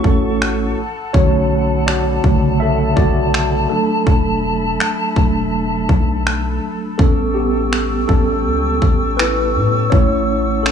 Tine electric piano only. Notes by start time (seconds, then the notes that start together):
Already playing: E3 A3 C#4 E4 F#4 A4 C#5
0.04 C#4 A4
1.13 D3 A3 C#4 F#4 C#5
1.86 F#4 D5
2.24 C#3 D3 A3
2.60 A4 E5
2.96 F#4 D5
3.70 F#3 A3 D4 A4
5.16 F#3 A3 D4
6.98 G3 B3 C#4 A4
7.34 B3 G4
8.08 G3 B3 C#4 A4
9.17 E4 B4
9.90 E3 A3 C#4 E4 C#5
10.63 C#4 A4